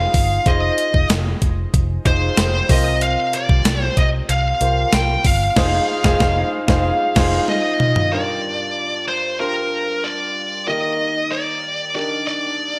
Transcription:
0.00 0.37 D#4 medium
0.00 0.37 F4 medium
0.00 0.37 G#4 medium
0.00 0.38 C5 medium
0.00 0.48 F5 medium
0.14 0.37 G1 loud
0.14 kick loud
0.14 open hi-hat medium
0.45 0.69 F1 medium
0.45 1.62 D#4 medium
0.45 1.62 F4 medium
0.45 1.62 G#4 medium
0.45 1.62 C5 medium
0.45 1.06 D#5 medium
0.45 kick loud
0.45 closed hi-hat medium
0.78 closed hi-hat medium
0.94 1.06 F1 loud
0.94 kick medium
1.10 1.33 F1 loud
1.10 snare loud
1.10 closed hi-hat medium
1.10 tambourine medium
1.42 1.65 F1 loud
1.42 kick medium
1.42 closed hi-hat medium
1.74 1.97 F1 loud
1.74 kick loud
1.74 closed hi-hat medium
2.05 2.29 F1 loud
2.05 2.69 D#4 medium
2.05 2.67 F4 medium
2.05 2.70 G#4 medium
2.05 2.68 C5 medium
2.05 2.72 C5 medium
2.05 kick loud
2.05 closed hi-hat medium
2.37 2.61 F1 loud
2.37 snare loud
2.37 closed hi-hat medium
2.37 tambourine medium
2.69 3.15 C2 loud
2.69 3.61 C3 medium
2.69 3.85 F4 medium
2.69 3.85 G4 medium
2.69 3.85 A#4 medium
2.69 3.86 C5 medium
2.69 3.02 D#5 medium
2.69 kick loud
2.69 open hi-hat medium
3.01 3.34 F5 loud
3.01 closed hi-hat medium
3.33 3.84 D5 loud
3.33 closed hi-hat medium
3.49 3.61 C2 medium
3.49 kick medium
3.65 3.88 C2 loud
3.65 snare loud
3.65 closed hi-hat loud
3.65 tambourine medium
3.84 3.98 C5 loud
3.97 4.20 C2 loud
3.97 4.07 D#5 medium
3.97 kick medium
3.97 closed hi-hat medium
4.29 4.52 C2 loud
4.29 4.95 F5 loud
4.29 closed hi-hat medium
4.60 4.84 C2 loud
4.60 5.48 F4 medium
4.60 5.48 G4 medium
4.60 5.48 A#4 medium
4.60 5.48 C5 medium
4.60 closed hi-hat medium
4.92 5.16 C2 loud
4.92 5.26 G5 loud
4.92 snare loud
4.92 closed hi-hat medium
4.92 tambourine medium
5.25 5.48 G1 medium
5.25 7.45 F5 loud
5.25 kick loud
5.25 open hi-hat medium
5.56 5.78 F1 loud
5.56 5.78 D#4 loud
5.56 5.78 F4 loud
5.56 5.78 G#4 loud
5.56 5.79 C5 loud
5.56 kick loud
5.56 snare loud
5.56 crash medium
6.04 6.18 F1 loud
6.04 6.18 D#4 loud
6.04 6.18 F4 loud
6.04 6.18 G#4 loud
6.04 6.19 C5 loud
6.04 kick loud
6.04 snare loud
6.20 6.42 F1 loud
6.20 6.42 D#4 medium
6.20 6.42 F4 medium
6.20 6.42 G#4 medium
6.20 6.43 C5 medium
6.20 kick loud
6.20 snare loud
6.68 6.90 F1 loud
6.68 6.90 D#4 medium
6.68 6.90 F4 medium
6.68 6.90 G#4 medium
6.68 6.90 C5 medium
6.68 kick loud
6.68 snare loud
7.16 7.38 F1 loud
7.16 7.38 D#4 medium
7.16 7.38 F4 medium
7.16 7.38 G#4 medium
7.16 7.38 C5 loud
7.16 kick loud
7.16 snare loud
7.16 crash medium
7.48 8.12 D#5 loud
7.48 high tom medium
7.80 mid tom medium
7.96 floor tom medium
8.11 9.04 G2 medium
8.11 9.28 D4 medium
8.11 9.28 F4 medium
8.11 9.28 G4 medium
8.11 9.28 A#4 medium
8.11 9.04 D5 medium
9.08 9.40 C5 medium
9.39 10.55 D4 medium
9.39 10.55 F4 medium
9.39 10.56 G4 medium
9.39 10.06 A#4 medium
9.39 10.56 C5 medium
10.04 10.67 D5 medium
10.67 11.59 D#3 medium
10.67 11.83 A#3 medium
10.67 11.83 D#4 medium
10.67 11.83 G4 medium
10.67 11.84 A#4 medium
10.67 11.31 D#5 medium
11.32 11.94 D5 medium
11.94 12.79 D4 medium
11.94 12.79 D#4 medium
11.94 12.79 G4 medium
11.94 12.79 A#4 medium
11.94 12.26 D5 medium
12.27 12.79 D5 medium

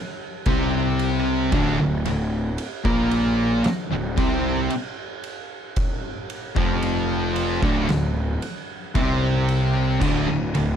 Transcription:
0.46 1.49 C2 loud
0.46 1.51 C3 medium
0.46 1.51 C4 loud
0.46 kick loud
0.46 ride loud
0.99 ride medium
1.52 1.77 D1 loud
1.52 1.77 D2 loud
1.52 1.78 D3 loud
1.52 kick loud
1.52 ride loud
1.79 2.04 D1 medium
1.79 2.05 D2 medium
2.05 2.56 D1 medium
2.05 2.48 D2 medium
2.05 ride medium
2.58 ride loud
2.84 3.61 A#1 loud
2.84 3.63 A#2 medium
2.84 3.63 A#3 loud
2.84 kick loud
3.11 ride medium
3.64 muted distorted electric guitar stroke medium
3.64 muted picked electric bass stroke soft
3.64 snare loud
3.64 ride loud
3.90 4.16 D1 medium
3.90 4.16 D2 medium
4.16 4.67 C2 loud
4.16 4.69 C3 loud
4.16 4.69 C4 loud
4.16 kick loud
4.16 ride medium
4.70 ride loud
5.24 ride medium
5.76 kick loud
5.76 ride loud
6.30 ride medium
6.55 7.59 F1 medium
6.55 7.61 F2 medium
6.55 7.61 F3 loud
6.55 kick loud
6.82 ride loud
7.36 ride medium
7.62 7.88 D1 loud
7.62 7.87 D2 medium
7.62 7.88 D3 loud
7.62 kick loud
7.88 8.39 D1 medium
7.88 8.32 D2 medium
7.88 snare loud
7.88 ride medium
8.42 ride medium
8.95 9.98 C2 loud
8.95 10.00 C3 loud
8.95 10.00 C4 loud
8.95 kick loud
8.95 ride loud
9.49 ride medium
10.00 10.26 D1 loud
10.00 10.26 D2 loud
10.00 10.26 D3 loud
10.00 kick loud
10.00 crash loud
10.28 10.54 D1 medium
10.28 10.53 D2 medium
10.54 10.76 D1 medium
10.54 10.76 D2 medium
10.54 ride medium

